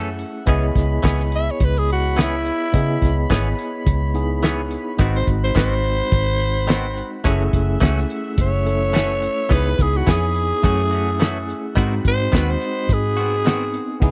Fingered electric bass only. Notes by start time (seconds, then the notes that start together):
Already playing: F#2
0.47 C#2
0.76 C#2
1.04 C#2
1.61 C#2
2.74 C#3
3.02 C#2
3.30 G#1
3.86 C#2
4.99 G#1
5.28 G#1
5.56 G#1
6.12 G#1
7.25 F#1
7.53 F#1
7.81 C#2
8.38 F#1
9.51 C#2
9.79 C#2
10.07 F2
10.64 F#2
11.77 G#2
12.05 G#2
12.33 D#2
12.89 G#2
14.02 C#2